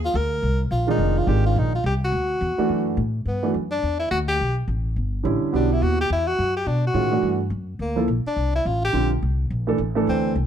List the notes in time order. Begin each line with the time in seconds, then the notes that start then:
Already playing: D#2
0.05 F4
0.14 D2 A#4
0.43 C2
0.71 A#1 F4
0.87 D#3 G#3 D4 D#4 F4
0.98 F1
1.18 F4
1.27 G#1 D#3 G#3 D4 F4 G4
1.46 F4
1.56 A#1 D#4
1.75 F4
1.84 C2 G4
2.04 F#4
2.12 D2
2.41 E2
2.58 E3 A3 D4 F#4, muted upright bass stroke
2.69 F#2
2.97 A2
3.25 G2 B3
3.43 E3 A3 D4 F#4
3.54 F#2
3.71 D4
3.83 E2
3.99 E4
4.11 D2 F#4
4.28 G4
4.40 B1
4.68 A1
4.96 G1
5.23 A1 D3 G3 C#4 E4
5.42 muted upright bass stroke
5.53 B1 B3 D4 E4 F#4 G4
5.72 E4
5.82 D#2 F#4
6.01 G4
6.10 E2 E4
6.27 F#4
6.39 F#2
6.57 G4
6.66 B2 D4
6.87 F#4
6.94 A2 D#3 G#3 C#4 F4
7.12 E3 A3 D4 F#4
7.23 G2
7.50 F#2
7.79 D2 A#3
7.96 F3 A#3 E4 A4
8.08 A#1
8.25 D4, muted upright bass stroke
8.36 C2
8.55 E4
8.65 A1 F4
8.85 G4
8.93 A#1 D3 G3 C4 F4
9.22 C2
9.50 A#1
9.67 E3 A3 D4 A4
9.78 A1
9.95 E3 A3 D4 A4
10.07 D2 C4
10.35 C2